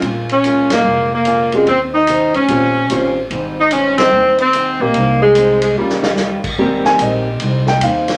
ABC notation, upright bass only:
X:1
M:4/4
L:1/8
Q:"Swing" 1/4=146
K:Ab
V:1 name="Upright bass" clef=bass
B,,,4 F,,,4 | E,,3 =D,, B,,,2 =A,,,2 | A,,,4 E,,3 B,,, | C,,4 E,,3 z |
A,,,2 B,,,2 C,,2 E,,2 |]